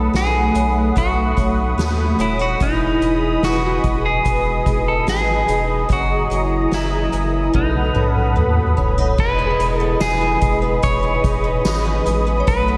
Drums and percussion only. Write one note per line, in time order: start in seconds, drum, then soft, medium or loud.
0.14 snare medium
0.14 closed hi-hat medium
0.55 closed hi-hat soft
0.97 kick medium
0.97 closed hi-hat medium
1.37 kick medium
1.37 closed hi-hat medium
1.79 snare loud
1.79 closed hi-hat medium
2.20 closed hi-hat soft
2.61 kick loud
2.61 closed hi-hat medium
3.02 closed hi-hat soft
3.43 snare medium
3.43 closed hi-hat medium
3.84 kick medium
3.84 closed hi-hat soft
4.25 kick medium
4.25 closed hi-hat medium
4.66 kick medium
4.66 closed hi-hat soft
5.08 snare loud
5.08 closed hi-hat medium
5.49 closed hi-hat soft
5.90 kick loud
5.90 closed hi-hat medium
6.31 closed hi-hat soft
6.72 snare medium
6.72 closed hi-hat medium
7.13 closed hi-hat soft
7.54 kick medium
7.54 high tom soft
7.75 high tom soft
7.96 mid tom medium
8.16 mid tom medium
8.37 mid tom medium
8.57 mid tom medium
8.77 floor tom medium
8.98 floor tom medium
9.19 kick loud
9.19 crash loud
9.60 closed hi-hat soft
10.01 snare loud
10.01 closed hi-hat medium
10.01 tambourine medium
10.41 kick medium
10.41 closed hi-hat medium
10.83 kick medium
10.83 closed hi-hat medium
11.24 kick loud
11.24 closed hi-hat medium
11.65 snare loud
11.65 closed hi-hat medium
11.65 tambourine medium
12.06 closed hi-hat medium
12.47 kick loud
12.47 closed hi-hat medium